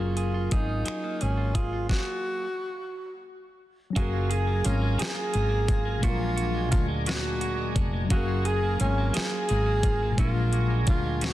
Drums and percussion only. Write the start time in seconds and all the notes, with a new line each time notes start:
0.17 closed hi-hat
0.51 kick, closed hi-hat
0.86 finger snap, closed hi-hat
1.21 closed hi-hat
1.55 kick, closed hi-hat
1.89 kick, snare
3.96 kick, closed hi-hat
4.31 closed hi-hat
4.64 closed hi-hat
4.99 snare, closed hi-hat
5.34 closed hi-hat
5.68 kick, closed hi-hat
6.03 kick, closed hi-hat
6.38 closed hi-hat
6.72 kick, closed hi-hat
7.06 snare, closed hi-hat
7.41 closed hi-hat
7.76 kick, closed hi-hat
8.10 kick, closed hi-hat
8.45 closed hi-hat
8.80 closed hi-hat
9.14 snare, closed hi-hat
9.49 closed hi-hat
9.83 kick, closed hi-hat
10.18 kick, closed hi-hat
10.53 closed hi-hat
10.87 kick, closed hi-hat
11.21 snare, closed hi-hat